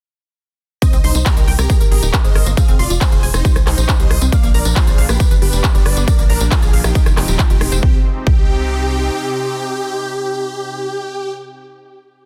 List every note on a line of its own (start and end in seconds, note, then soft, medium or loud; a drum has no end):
0.82 0.89 C4 medium
0.82 0.98 C5 medium
0.82 0.98 D#5 loud
0.82 kick loud
0.82 closed hi-hat medium
0.82 tambourine medium
0.93 1.02 C2 medium
0.93 1.00 C4 loud
0.93 closed hi-hat medium
0.93 tambourine soft
1.04 1.13 C2 loud
1.04 1.20 D#4 medium
1.04 1.20 C5 medium
1.04 1.11 C6 loud
1.04 open hi-hat loud
1.15 1.24 C2 medium
1.15 1.19 D#4 medium
1.15 closed hi-hat medium
1.15 tambourine medium
1.26 1.33 G4 medium
1.26 1.49 G4 medium
1.26 1.49 A#4 loud
1.26 kick loud
1.26 clap loud
1.26 closed hi-hat medium
1.37 1.46 C2 medium
1.37 1.44 D#5 medium
1.37 closed hi-hat medium
1.37 tambourine soft
1.48 1.57 C2 loud
1.48 1.54 G5 loud
1.48 open hi-hat loud
1.58 1.68 C2 medium
1.58 1.65 C4 medium
1.58 1.82 G4 medium
1.58 1.82 A#4 loud
1.58 cross-stick medium
1.58 closed hi-hat medium
1.58 tambourine medium
1.70 1.76 G#4 medium
1.70 kick loud
1.70 closed hi-hat medium
1.70 tambourine medium
1.81 1.90 G#1 medium
1.81 1.87 A#4 medium
1.81 closed hi-hat medium
1.81 tambourine soft
1.91 2.01 G#1 loud
1.91 2.15 G4 medium
1.91 1.98 G#4 medium
1.91 2.15 A#4 loud
1.91 open hi-hat loud
2.02 2.12 D#1 loud
2.02 2.07 D#4 medium
2.02 closed hi-hat medium
2.02 tambourine medium
2.13 2.17 A#4 medium
2.13 kick loud
2.13 clap loud
2.13 closed hi-hat medium
2.13 tambourine soft
2.24 2.33 G#1 medium
2.24 2.35 G#4 medium
2.24 2.48 C5 medium
2.24 2.48 D#5 loud
2.24 closed hi-hat medium
2.24 tambourine soft
2.35 2.44 G#1 loud
2.35 2.46 A#4 medium
2.35 cross-stick medium
2.35 open hi-hat loud
2.46 2.55 G#1 medium
2.46 2.53 A#3 medium
2.46 closed hi-hat medium
2.46 tambourine medium
2.57 2.64 C4 medium
2.57 2.73 G#4 medium
2.57 2.73 F5 loud
2.57 kick loud
2.57 closed hi-hat medium
2.57 tambourine medium
2.68 2.77 F1 medium
2.68 2.75 C4 loud
2.68 closed hi-hat medium
2.68 tambourine soft
2.79 2.88 F1 loud
2.79 2.95 F4 medium
2.79 2.95 D5 medium
2.79 2.86 C6 loud
2.79 open hi-hat loud
2.90 2.99 F1 medium
2.90 2.94 F4 medium
2.90 closed hi-hat medium
2.90 tambourine medium
3.01 3.08 G#4 medium
3.01 3.25 G#4 medium
3.01 3.25 C5 loud
3.01 kick loud
3.01 clap loud
3.01 closed hi-hat medium
3.01 tambourine medium
3.12 3.21 F1 medium
3.12 3.19 F5 medium
3.12 closed hi-hat medium
3.12 tambourine soft
3.23 3.32 F1 loud
3.23 3.30 G#5 loud
3.23 open hi-hat loud
3.34 3.43 F1 medium
3.34 3.41 C4 medium
3.34 3.58 D#4 medium
3.34 3.58 C5 loud
3.34 cross-stick medium
3.34 closed hi-hat medium
3.34 tambourine medium
3.45 3.52 G4 medium
3.45 kick loud
3.45 closed hi-hat medium
3.45 tambourine medium
3.56 3.65 C2 medium
3.56 3.63 C5 medium
3.56 cross-stick medium
3.56 closed hi-hat medium
3.56 tambourine soft
3.67 3.76 C2 loud
3.67 3.90 D#4 medium
3.67 3.74 G4 medium
3.67 3.90 C5 loud
3.67 cross-stick medium
3.67 clap medium
3.67 open hi-hat loud
3.78 3.87 A#1 loud
3.78 3.82 D#4 medium
3.78 closed hi-hat medium
3.78 tambourine medium
3.89 3.93 C5 medium
3.89 kick loud
3.89 clap loud
3.89 closed hi-hat medium
3.99 4.09 C2 medium
3.99 4.10 G4 medium
3.99 4.23 C5 medium
3.99 4.23 D#5 loud
3.99 closed hi-hat medium
3.99 tambourine soft
4.10 4.20 C2 loud
4.10 4.21 C5 medium
4.10 cross-stick medium
4.10 open hi-hat loud
4.21 4.31 C2 medium
4.21 4.28 C4 medium
4.21 closed hi-hat medium
4.21 tambourine medium
4.32 5.19 F3 medium
4.32 4.39 A#3 medium
4.32 5.19 A#3 medium
4.32 5.19 D4 medium
4.32 4.48 D5 medium
4.32 4.48 F5 loud
4.32 kick loud
4.32 closed hi-hat medium
4.32 tambourine medium
4.43 4.53 A#1 medium
4.43 4.50 A#3 loud
4.43 closed hi-hat medium
4.43 tambourine soft
4.54 4.63 A#1 loud
4.54 4.70 A#4 medium
4.54 4.70 D5 medium
4.54 4.61 A#5 loud
4.54 open hi-hat loud
4.65 4.74 A#1 medium
4.65 4.69 D4 medium
4.65 closed hi-hat medium
4.65 tambourine medium
4.76 4.83 F4 medium
4.76 5.00 G#4 medium
4.76 5.00 C5 loud
4.76 kick loud
4.76 clap loud
4.76 closed hi-hat medium
4.87 4.96 A#1 medium
4.87 4.94 D5 medium
4.87 closed hi-hat medium
4.87 tambourine soft
4.98 5.07 A#1 loud
4.98 5.05 F5 loud
4.98 open hi-hat loud
5.09 5.18 A#1 medium
5.09 5.16 A#3 medium
5.09 5.33 G4 medium
5.09 5.33 B4 loud
5.09 cross-stick medium
5.09 closed hi-hat medium
5.09 tambourine medium
5.20 6.07 G3 medium
5.20 6.07 B3 medium
5.20 6.93 D4 medium
5.20 5.27 G4 medium
5.20 kick loud
5.20 closed hi-hat medium
5.20 tambourine medium
5.31 5.40 G1 medium
5.31 5.38 B4 medium
5.31 closed hi-hat medium
5.31 tambourine soft
5.42 5.51 G1 loud
5.42 5.65 G4 medium
5.42 5.49 G4 medium
5.42 5.65 B4 loud
5.42 open hi-hat loud
5.53 5.62 F1 medium
5.53 5.57 D4 medium
5.53 closed hi-hat medium
5.53 tambourine medium
5.64 5.68 B4 medium
5.64 kick loud
5.64 clap loud
5.64 closed hi-hat medium
5.64 tambourine medium
5.75 5.84 G1 medium
5.75 5.85 G4 medium
5.75 5.98 B4 medium
5.75 5.98 D5 loud
5.75 closed hi-hat medium
5.75 tambourine soft
5.86 5.95 G1 loud
5.86 5.96 B4 medium
5.86 cross-stick medium
5.86 open hi-hat loud
5.97 6.06 G1 medium
5.97 6.03 B3 medium
5.97 closed hi-hat medium
5.97 tambourine medium
6.08 7.81 F3 medium
6.08 6.14 A#3 medium
6.08 6.94 A#3 medium
6.08 6.23 A#4 medium
6.08 6.23 D5 loud
6.08 kick loud
6.08 closed hi-hat medium
6.08 tambourine medium
6.18 6.28 A#1 medium
6.18 6.25 A#3 loud
6.18 closed hi-hat medium
6.18 tambourine soft
6.29 6.39 A#1 loud
6.29 6.45 D4 medium
6.29 6.45 A#4 medium
6.29 6.36 A#5 loud
6.29 open hi-hat loud
6.40 6.50 A#1 medium
6.40 6.45 D4 medium
6.40 closed hi-hat medium
6.40 tambourine medium
6.51 6.58 F4 medium
6.51 6.75 F4 medium
6.51 6.75 G#4 loud
6.51 kick loud
6.51 clap loud
6.51 closed hi-hat medium
6.51 tambourine medium
6.62 6.71 A#1 medium
6.62 6.69 D5 medium
6.62 closed hi-hat soft
6.62 tambourine soft
6.73 6.82 A#1 loud
6.73 6.80 F5 loud
6.73 open hi-hat loud
6.84 6.93 A#1 medium
6.84 6.91 A#3 medium
6.84 7.08 D#4 medium
6.84 7.08 G4 loud
6.84 cross-stick medium
6.84 tambourine medium
6.95 7.82 G#3 medium
6.95 7.82 C4 medium
6.95 7.02 G#4 medium
6.95 kick loud
6.95 closed hi-hat medium
6.95 tambourine medium
7.06 7.15 F1 medium
7.06 7.13 C5 medium
7.06 cross-stick medium
7.06 closed hi-hat medium
7.06 tambourine soft
7.17 7.26 F1 loud
7.17 7.24 C4 medium
7.17 7.41 D#4 medium
7.17 7.41 G4 loud
7.17 cross-stick medium
7.17 clap medium
7.17 open hi-hat loud
7.28 7.37 D#1 medium
7.28 7.35 C4 medium
7.28 tambourine medium
7.39 7.49 F4 medium
7.39 kick loud
7.39 clap loud
7.39 closed hi-hat medium
7.39 tambourine medium
7.50 7.59 F1 medium
7.50 7.74 D#4 medium
7.50 7.54 F4 medium
7.50 7.74 G4 loud
7.50 closed hi-hat medium
7.50 tambourine soft
7.61 7.70 F1 loud
7.61 7.71 C6 medium
7.61 cross-stick medium
7.61 open hi-hat loud
7.72 7.81 F1 medium
7.72 7.79 C5 loud
7.72 closed hi-hat medium
7.72 tambourine medium
7.83 7.95 C2 medium
7.83 10.87 C3 medium
7.83 10.87 C4 medium
7.83 7.95 C4 loud
7.83 10.87 D#4 medium
7.83 7.95 G4 loud
7.83 10.87 G4 medium
7.83 kick loud
8.27 9.10 C2 loud
8.27 8.39 C4 medium
8.27 11.31 G4 loud
8.27 kick loud